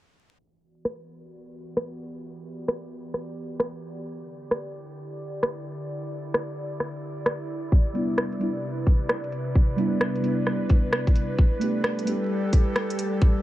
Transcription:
0.39 analog synth pad E3
0.56 analog synth pad F#4
0.65 analog synth pad B3 D5
0.85 cross-stick
0.96 analog synth pad G4
1.77 cross-stick
2.68 cross-stick
3.14 cross-stick
3.60 cross-stick
4.06 analog synth pad D3
4.43 analog synth pad E4
4.51 cross-stick
5.43 cross-stick
6.34 cross-stick
6.80 cross-stick
7.26 cross-stick
7.72 analog synth pad C3, kick
7.90 synth keys G3, analog synth pad B4
7.94 synth keys B3 D4 E4, closed hi-hat
8.18 cross-stick
8.32 closed hi-hat
8.39 synth keys G3 B3 D4 E4, closed hi-hat
8.87 kick, closed hi-hat
9.09 cross-stick
9.24 closed hi-hat
9.32 closed hi-hat
9.55 kick
9.76 synth keys G3 B3 D4 E4, closed hi-hat
10.01 cross-stick
10.15 closed hi-hat
10.20 synth keys G3 B3, closed hi-hat
10.25 synth keys D4 E4
10.47 cross-stick
10.69 kick, closed hi-hat
10.93 cross-stick
11.07 kick, closed hi-hat
11.16 closed hi-hat
11.39 analog synth pad G3, kick
11.47 analog synth pad A4
11.59 synth keys A3 B3 D4, analog synth pad G4, closed hi-hat
11.63 synth keys G4
11.84 cross-stick
11.99 closed hi-hat
12.05 synth keys A3 B3 D4 G4, closed hi-hat
12.53 kick, closed hi-hat
12.76 cross-stick
12.90 closed hi-hat
12.99 closed hi-hat
13.22 kick

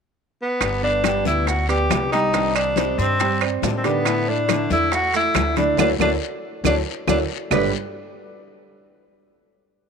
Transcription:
0.42 tenor saxophone B3
0.61 upright bass G1, nylon-string guitar D3 G3 B3 G4, high bongo, high conga, high timbale, long guiro, claves, maracas
0.83 grand piano B3 B4 D5, tenor saxophone D4, high conga
1.04 nylon-string guitar D3 G3 B3 G4, grand piano G3 G4 G5, high bongo, high conga, high timbale, low timbale, short guiro, claves, maracas
1.25 upright bass D2, grand piano B3 B4 D5, tenor saxophone E4, high conga, short guiro, maracas
1.47 tenor saxophone F#4, muted nylon-string guitar stroke, high bongo, high conga, high timbale, long guiro, maracas
1.68 grand piano B3 B4 D5, tenor saxophone G4, high conga, high timbale, maracas
1.90 upright bass C2, nylon-string guitar D3 G3 B3 G4, high bongo, low bongo, high conga, high timbale, low timbale, short guiro, claves, maracas
2.12 grand piano G3 G4 G5, nylon-string guitar G3 B3 G4, tenor saxophone D#4, high timbale, short guiro, maracas
2.33 nylon-string guitar C3 D#3 G3 D4 G4, grand piano G3 G4 G5, high bongo, high conga, high timbale, long guiro, maracas
2.55 tenor saxophone D4, high bongo, high conga, high timbale, claves, maracas
2.76 nylon-string guitar C3 D#3 G3 D4 G4, grand piano C4 C5 D5, high bongo, high conga, high timbale, low timbale, short guiro, maracas
2.98 upright bass G2, tenor saxophone C4, high bongo, high conga, short guiro, maracas
3.20 grand piano G3 G4 G5, muted nylon-string guitar stroke, high bongo, high conga, high timbale, long guiro, maracas
3.41 grand piano C4 C5 D5, high bongo, high conga, high timbale, claves
3.62 upright bass A2, nylon-string guitar D#3 G3 D4 G4, high bongo, low bongo, high conga, low timbale, short guiro, maracas
3.77 tenor saxophone C4
3.84 grand piano D3 D4 D5, nylon-string guitar D#3 G3 D4 G4, tenor saxophone B3, high conga, high timbale, short guiro, maracas
4.05 nylon-string guitar D3 A3 D4 E4, high bongo, high conga, high timbale, long guiro, claves, maracas
4.28 grand piano A3 A4, tenor saxophone D4, high conga
4.48 nylon-string guitar D3 A3 D4 E4, grand piano D3 D4 D5, high bongo, high conga, high timbale, low timbale, short guiro, claves, maracas
4.70 upright bass E2, grand piano A3 A4, tenor saxophone E4, high conga, short guiro, maracas
4.92 tenor saxophone F#4, muted nylon-string guitar stroke, high bongo, high conga, high timbale, long guiro, maracas
5.14 grand piano A3 A4, tenor saxophone E4, high conga, high timbale, maracas
5.34 upright bass D2, nylon-string guitar D3 A3 D4 E4, high bongo, low bongo, high conga, high timbale, low timbale, short guiro, claves, maracas
5.56 grand piano D3 D4 D5, nylon-string guitar A3 D4 E4, tenor saxophone D4, high conga, high timbale, short guiro, maracas
5.77 upright bass D2, nylon-string guitar F#3 A3 D4, tenor saxophone D4, grand piano E4 F#4 A4, low bongo, high conga, high timbale, long guiro, claves, maracas
5.99 upright bass D2, nylon-string guitar F#3 A3 D4, tenor saxophone D4, grand piano E4 F#4 A4, low bongo, high conga, high timbale, long guiro, claves, maracas
6.64 upright bass D2, nylon-string guitar F#3 A3 D4, tenor saxophone D4, grand piano E4 F#4 A4, low bongo, high conga, high timbale, long guiro, claves, maracas
7.07 upright bass D2, nylon-string guitar F#3 A3 D4, tenor saxophone D4, grand piano E4 F#4 A4, low bongo, high conga, high timbale, long guiro, claves, maracas
7.51 upright bass G1, nylon-string guitar G2 A2 D3 G3 B3 G4, grand piano G3 D4 G4 A4 B4 D5, tenor saxophone B4, low bongo, low conga, low timbale, long guiro, claves, maracas

